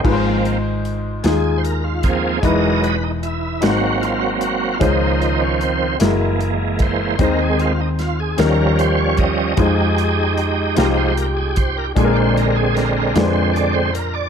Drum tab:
CC |x-----|------|------|------|
HH |-xxxxx|xxxxxx|xxxxxx|xxxxxx|
SD |---o--|---o--|---o--|--oo--|
BD |o----o|o-----|o----o|o----o|

CC |------|------|
HH |xxxxxx|xxxxxx|
SD |---o--|--oo--|
BD |o----o|o-----|